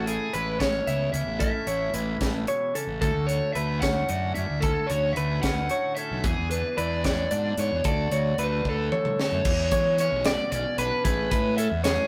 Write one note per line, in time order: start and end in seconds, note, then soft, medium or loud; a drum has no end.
0.00 0.17 A1 medium
0.00 1.38 A2 medium
0.00 0.33 E3 medium
0.00 0.34 A3 medium
0.00 0.61 C#4 medium
0.00 0.33 A4 medium
0.07 0.87 E4 medium
0.07 0.35 G#4 medium
0.07 closed hi-hat medium
0.33 0.80 A1 medium
0.33 1.38 E3 medium
0.33 1.38 G#3 medium
0.33 0.60 B4 medium
0.33 closed hi-hat medium
0.60 1.14 C#4 medium
0.60 1.12 C#5 medium
0.60 0.87 C#5 medium
0.60 kick medium
0.60 snare loud
0.60 closed hi-hat medium
0.87 1.10 C#2 medium
0.87 1.38 E2 medium
0.87 1.38 E4 medium
0.87 1.41 E5 medium
0.87 closed hi-hat medium
1.13 1.25 C#2 medium
1.13 1.40 C#4 medium
1.13 1.40 E5 medium
1.13 closed hi-hat medium
1.27 1.50 A1 medium
1.40 2.21 A2 medium
1.40 3.03 C#4 medium
1.40 1.67 A4 medium
1.40 2.17 E5 medium
1.40 kick medium
1.40 closed hi-hat medium
1.67 1.90 A1 medium
1.67 2.99 E4 medium
1.67 1.94 C#5 medium
1.67 closed hi-hat medium
1.94 2.17 A1 medium
1.94 2.99 E3 medium
1.94 2.99 G#3 medium
1.94 2.48 B4 medium
1.94 closed hi-hat medium
2.20 2.44 A1 medium
2.20 2.47 A2 medium
2.20 kick medium
2.20 snare medium
2.20 closed hi-hat medium
2.47 2.74 B2 medium
2.47 2.75 C#5 medium
2.47 closed hi-hat medium
2.75 3.02 C#3 medium
2.75 3.00 A4 medium
2.75 closed hi-hat medium
2.87 2.99 A1 medium
3.01 4.63 D2 medium
3.01 3.14 D2 medium
3.01 3.54 D3 medium
3.01 3.55 A3 medium
3.01 3.82 C#4 medium
3.01 3.28 F#4 medium
3.01 3.26 A4 medium
3.01 3.55 A4 medium
3.01 kick medium
3.01 closed hi-hat medium
3.15 3.38 D2 medium
3.26 4.09 F#4 medium
3.26 3.53 C#5 medium
3.26 closed hi-hat medium
3.53 4.02 D2 medium
3.53 5.16 D3 medium
3.53 4.59 A3 medium
3.53 3.82 B4 medium
3.53 3.79 E5 medium
3.53 closed hi-hat medium
3.81 4.37 C#4 medium
3.81 4.09 C#5 medium
3.81 4.34 F#5 medium
3.81 kick medium
3.81 snare loud
3.81 closed hi-hat medium
4.09 4.33 F#2 medium
4.09 4.63 A2 medium
4.09 4.91 F#4 medium
4.09 4.63 D5 medium
4.09 closed hi-hat medium
4.35 4.48 F#2 medium
4.35 4.65 C#4 medium
4.35 4.60 E5 medium
4.35 closed hi-hat medium
4.50 4.73 D2 medium
4.61 4.90 A4 medium
4.61 kick medium
4.61 closed hi-hat medium
4.65 6.24 D2 medium
4.65 5.44 C#4 medium
4.87 5.14 D2 medium
4.87 5.13 C#5 medium
4.87 5.17 C#5 medium
4.87 closed hi-hat medium
4.91 5.70 F#4 medium
5.13 5.40 E5 medium
5.13 closed hi-hat medium
5.17 5.40 D2 medium
5.17 6.77 D3 medium
5.17 6.21 A3 medium
5.17 5.71 B4 medium
5.42 5.67 D2 medium
5.42 5.98 C#4 medium
5.42 5.93 F#5 medium
5.42 kick medium
5.42 snare medium
5.42 closed hi-hat medium
5.69 6.24 A2 medium
5.69 6.27 F#4 medium
5.69 5.97 C#5 medium
5.69 closed hi-hat medium
5.95 6.24 C#4 medium
5.95 6.24 A4 medium
5.95 6.24 E5 medium
5.95 closed hi-hat medium
6.11 6.23 B1 medium
6.24 6.36 E2 medium
6.24 7.82 E2 medium
6.24 7.04 B3 medium
6.24 6.49 G#4 medium
6.24 6.77 G#4 medium
6.24 kick loud
6.24 closed hi-hat medium
6.38 6.61 E2 medium
6.51 7.31 D4 medium
6.51 6.79 B4 medium
6.51 closed hi-hat medium
6.77 7.25 E2 medium
6.77 7.87 E3 medium
6.77 7.82 G#3 medium
6.77 7.04 B4 medium
6.77 7.03 D5 medium
6.77 closed hi-hat medium
7.04 7.57 B3 medium
7.04 7.31 C#5 medium
7.04 7.55 D5 medium
7.04 kick medium
7.04 snare medium
7.04 closed hi-hat medium
7.31 7.55 G#2 medium
7.31 7.82 B2 medium
7.31 7.85 D4 medium
7.31 7.85 D5 medium
7.31 closed hi-hat medium
7.57 7.70 G#2 medium
7.57 7.82 B3 medium
7.57 7.87 C#5 medium
7.57 closed hi-hat medium
7.71 7.83 E2 medium
7.84 9.18 D2 medium
7.84 8.08 D2 medium
7.84 8.11 F#4 medium
7.84 8.12 A4 medium
7.84 8.89 D5 medium
7.84 kick medium
7.84 closed hi-hat medium
8.11 8.35 D2 medium
8.11 9.42 F#4 medium
8.11 8.38 C#5 medium
8.11 closed hi-hat medium
8.38 8.62 D2 medium
8.38 11.06 D3 medium
8.38 9.43 A3 medium
8.38 8.92 B4 medium
8.38 closed hi-hat medium
8.43 8.69 B4 medium
8.65 8.89 D2 medium
8.65 9.22 A4 medium
8.65 kick medium
8.92 9.20 C#5 medium
8.92 mid tom medium
9.05 mid tom medium
9.19 9.46 D2 medium
9.19 9.46 A4 medium
9.19 9.96 C#5 medium
9.19 snare medium
9.32 9.44 F#2 medium
9.45 9.69 E2 medium
9.45 11.03 E2 medium
9.45 kick loud
9.45 crash loud
9.71 10.07 E3 medium
9.71 11.03 G#3 medium
9.71 10.26 C#5 medium
9.71 kick medium
9.71 closed hi-hat medium
9.98 10.54 C#4 medium
9.98 10.26 C#5 medium
9.98 closed hi-hat medium
10.12 10.36 B1 medium
10.25 11.03 B2 medium
10.25 10.78 D5 medium
10.25 10.51 D5 medium
10.25 snare loud
10.25 closed hi-hat medium
10.52 10.64 B1 medium
10.52 11.58 C#4 medium
10.52 10.78 D5 medium
10.52 closed hi-hat medium
10.78 10.90 B1 medium
10.78 11.07 D4 medium
10.78 11.05 B4 medium
10.78 11.04 B4 medium
10.78 closed hi-hat medium
11.04 11.28 A1 medium
11.04 12.07 A2 medium
11.04 11.32 G#4 medium
11.04 11.55 B4 medium
11.04 kick medium
11.04 closed hi-hat loud
11.31 11.67 A2 medium
11.31 12.07 G#3 medium
11.31 11.57 B4 medium
11.31 kick medium
11.31 closed hi-hat medium
11.57 12.07 C#4 medium
11.57 11.66 A4 medium
11.57 11.83 E5 medium
11.57 closed hi-hat medium
11.71 11.95 E2 medium
11.84 12.07 F#2 medium
11.84 12.07 G#4 medium
11.84 12.07 C#5 medium
11.84 snare loud
11.84 closed hi-hat medium